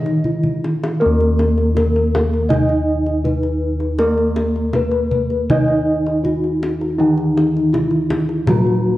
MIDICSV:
0, 0, Header, 1, 6, 480
1, 0, Start_track
1, 0, Tempo, 749064
1, 641, Time_signature, 4, 2, 24, 8
1, 5751, End_track
2, 0, Start_track
2, 0, Title_t, "Bansuri"
2, 0, Program_c, 0, 73
2, 0, Note_on_c, 0, 75, 88
2, 374, Note_off_c, 0, 75, 0
2, 5751, End_track
3, 0, Start_track
3, 0, Title_t, "Bronze metallophone"
3, 0, Program_c, 1, 11
3, 0, Note_on_c, 1, 63, 89
3, 155, Note_off_c, 1, 63, 0
3, 162, Note_on_c, 1, 64, 68
3, 643, Note_off_c, 1, 64, 0
3, 647, Note_on_c, 1, 70, 97
3, 1123, Note_off_c, 1, 70, 0
3, 1132, Note_on_c, 1, 70, 83
3, 1598, Note_on_c, 1, 75, 90
3, 1605, Note_off_c, 1, 70, 0
3, 2078, Note_off_c, 1, 75, 0
3, 2081, Note_on_c, 1, 71, 69
3, 2555, Note_on_c, 1, 70, 77
3, 2559, Note_off_c, 1, 71, 0
3, 3035, Note_off_c, 1, 70, 0
3, 3045, Note_on_c, 1, 71, 92
3, 3520, Note_off_c, 1, 71, 0
3, 3530, Note_on_c, 1, 75, 99
3, 4002, Note_off_c, 1, 75, 0
3, 4003, Note_on_c, 1, 66, 83
3, 4478, Note_off_c, 1, 66, 0
3, 4484, Note_on_c, 1, 63, 104
3, 4953, Note_on_c, 1, 64, 83
3, 4958, Note_off_c, 1, 63, 0
3, 5432, Note_off_c, 1, 64, 0
3, 5436, Note_on_c, 1, 66, 108
3, 5751, Note_off_c, 1, 66, 0
3, 5751, End_track
4, 0, Start_track
4, 0, Title_t, "Kettle gongs"
4, 0, Program_c, 2, 14
4, 0, Note_on_c, 2, 51, 78
4, 0, Note_on_c, 2, 70, 64
4, 127, Note_off_c, 2, 70, 0
4, 160, Note_on_c, 2, 64, 46
4, 211, Note_off_c, 2, 64, 0
4, 641, Note_on_c, 2, 70, 77
4, 677, Note_on_c, 2, 39, 99
4, 1095, Note_off_c, 2, 51, 0
4, 1121, Note_on_c, 2, 64, 45
4, 1172, Note_off_c, 2, 64, 0
4, 2053, Note_off_c, 2, 70, 0
4, 2079, Note_on_c, 2, 64, 47
4, 2131, Note_off_c, 2, 64, 0
4, 2560, Note_on_c, 2, 70, 78
4, 3039, Note_on_c, 2, 64, 38
4, 3090, Note_off_c, 2, 64, 0
4, 3508, Note_off_c, 2, 39, 0
4, 3524, Note_on_c, 2, 51, 77
4, 3970, Note_off_c, 2, 70, 0
4, 3995, Note_on_c, 2, 64, 56
4, 4046, Note_off_c, 2, 64, 0
4, 4476, Note_on_c, 2, 63, 89
4, 4932, Note_off_c, 2, 51, 0
4, 4959, Note_on_c, 2, 64, 47
4, 5010, Note_off_c, 2, 64, 0
4, 5425, Note_on_c, 2, 46, 80
4, 5751, Note_off_c, 2, 46, 0
4, 5751, Note_off_c, 2, 63, 0
4, 5751, End_track
5, 0, Start_track
5, 0, Title_t, "Bronze metallophone"
5, 0, Program_c, 3, 11
5, 0, Note_on_c, 3, 51, 75
5, 645, Note_off_c, 3, 51, 0
5, 650, Note_on_c, 3, 58, 75
5, 1604, Note_off_c, 3, 58, 0
5, 1606, Note_on_c, 3, 63, 90
5, 2561, Note_off_c, 3, 63, 0
5, 2561, Note_on_c, 3, 58, 61
5, 3518, Note_off_c, 3, 58, 0
5, 3528, Note_on_c, 3, 63, 89
5, 4480, Note_off_c, 3, 63, 0
5, 4489, Note_on_c, 3, 51, 75
5, 5440, Note_off_c, 3, 51, 0
5, 5443, Note_on_c, 3, 54, 86
5, 5751, Note_off_c, 3, 54, 0
5, 5751, End_track
6, 0, Start_track
6, 0, Title_t, "Kendang"
6, 37, Note_on_c, 9, 62, 24
6, 102, Note_off_c, 9, 62, 0
6, 155, Note_on_c, 9, 64, 43
6, 219, Note_off_c, 9, 64, 0
6, 278, Note_on_c, 9, 64, 48
6, 343, Note_off_c, 9, 64, 0
6, 412, Note_on_c, 9, 63, 55
6, 476, Note_off_c, 9, 63, 0
6, 535, Note_on_c, 9, 63, 66
6, 599, Note_off_c, 9, 63, 0
6, 772, Note_on_c, 9, 62, 28
6, 836, Note_off_c, 9, 62, 0
6, 893, Note_on_c, 9, 63, 60
6, 957, Note_off_c, 9, 63, 0
6, 1012, Note_on_c, 9, 62, 25
6, 1076, Note_off_c, 9, 62, 0
6, 1133, Note_on_c, 9, 63, 69
6, 1133, Note_on_c, 9, 64, 59
6, 1197, Note_off_c, 9, 63, 0
6, 1197, Note_off_c, 9, 64, 0
6, 1257, Note_on_c, 9, 62, 30
6, 1321, Note_off_c, 9, 62, 0
6, 1378, Note_on_c, 9, 63, 75
6, 1378, Note_on_c, 9, 64, 70
6, 1442, Note_off_c, 9, 63, 0
6, 1442, Note_off_c, 9, 64, 0
6, 1499, Note_on_c, 9, 62, 26
6, 1563, Note_off_c, 9, 62, 0
6, 1606, Note_on_c, 9, 63, 59
6, 1606, Note_on_c, 9, 64, 99
6, 1670, Note_off_c, 9, 63, 0
6, 1670, Note_off_c, 9, 64, 0
6, 1727, Note_on_c, 9, 62, 23
6, 1791, Note_off_c, 9, 62, 0
6, 1964, Note_on_c, 9, 62, 25
6, 2028, Note_off_c, 9, 62, 0
6, 2084, Note_on_c, 9, 64, 62
6, 2148, Note_off_c, 9, 64, 0
6, 2200, Note_on_c, 9, 62, 23
6, 2264, Note_off_c, 9, 62, 0
6, 2437, Note_on_c, 9, 62, 29
6, 2501, Note_off_c, 9, 62, 0
6, 2555, Note_on_c, 9, 63, 63
6, 2619, Note_off_c, 9, 63, 0
6, 2678, Note_on_c, 9, 62, 25
6, 2742, Note_off_c, 9, 62, 0
6, 2795, Note_on_c, 9, 63, 61
6, 2859, Note_off_c, 9, 63, 0
6, 2920, Note_on_c, 9, 62, 22
6, 2984, Note_off_c, 9, 62, 0
6, 3033, Note_on_c, 9, 63, 64
6, 3033, Note_on_c, 9, 64, 65
6, 3097, Note_off_c, 9, 63, 0
6, 3097, Note_off_c, 9, 64, 0
6, 3149, Note_on_c, 9, 62, 28
6, 3213, Note_off_c, 9, 62, 0
6, 3276, Note_on_c, 9, 64, 61
6, 3340, Note_off_c, 9, 64, 0
6, 3397, Note_on_c, 9, 62, 26
6, 3461, Note_off_c, 9, 62, 0
6, 3523, Note_on_c, 9, 64, 96
6, 3587, Note_off_c, 9, 64, 0
6, 3639, Note_on_c, 9, 62, 19
6, 3703, Note_off_c, 9, 62, 0
6, 3886, Note_on_c, 9, 62, 25
6, 3950, Note_off_c, 9, 62, 0
6, 4002, Note_on_c, 9, 64, 57
6, 4066, Note_off_c, 9, 64, 0
6, 4125, Note_on_c, 9, 62, 22
6, 4189, Note_off_c, 9, 62, 0
6, 4247, Note_on_c, 9, 63, 68
6, 4311, Note_off_c, 9, 63, 0
6, 4367, Note_on_c, 9, 62, 29
6, 4431, Note_off_c, 9, 62, 0
6, 4599, Note_on_c, 9, 62, 25
6, 4663, Note_off_c, 9, 62, 0
6, 4726, Note_on_c, 9, 63, 46
6, 4790, Note_off_c, 9, 63, 0
6, 4849, Note_on_c, 9, 62, 25
6, 4913, Note_off_c, 9, 62, 0
6, 4961, Note_on_c, 9, 63, 58
6, 4961, Note_on_c, 9, 64, 56
6, 5025, Note_off_c, 9, 63, 0
6, 5025, Note_off_c, 9, 64, 0
6, 5068, Note_on_c, 9, 62, 24
6, 5132, Note_off_c, 9, 62, 0
6, 5193, Note_on_c, 9, 63, 81
6, 5193, Note_on_c, 9, 64, 71
6, 5257, Note_off_c, 9, 63, 0
6, 5257, Note_off_c, 9, 64, 0
6, 5312, Note_on_c, 9, 62, 27
6, 5376, Note_off_c, 9, 62, 0
6, 5429, Note_on_c, 9, 63, 70
6, 5429, Note_on_c, 9, 64, 85
6, 5493, Note_off_c, 9, 63, 0
6, 5493, Note_off_c, 9, 64, 0
6, 5553, Note_on_c, 9, 62, 23
6, 5617, Note_off_c, 9, 62, 0
6, 5751, End_track
0, 0, End_of_file